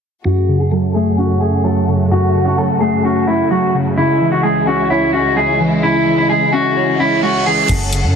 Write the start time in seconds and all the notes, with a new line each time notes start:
0.25 F#2 C#3 A3 F#4
0.48 C#3
0.60 G#4
0.72 F#3 A4
0.94 A3 G#4
1.18 C#4 F#4
1.41 A3 G#4
1.64 F#3 A4
1.88 C#3
2.11 F#2 F#4
2.35 C#3
2.46 F#4
2.58 F#3 A4
2.81 A3 G#4
3.04 C#4 F#4
3.27 A3 E4
3.51 F#3 F#4
3.74 C#3
3.97 C#2 C#3 G#3 E4
4.21 E3
4.32 F#4
4.43 G#3 G#4
4.67 C#4 F#4
4.90 E4 C#5
5.13 C#4 F#4
5.37 G#3 G#4
5.60 E3
5.83 C#3 E4
6.07 E3
6.18 E4
6.30 G#3 G#4
6.53 C#4 F#4
6.76 C#5, reverse cymbal
6.99 C#4 E4
7.23 G#3 F#4
7.46 E3 G#4
7.69 F#1 F#2 F#3 C#4 A4 F#5, kick, closed hi-hat, crash
7.93 C#3, closed hi-hat
8.04 F#2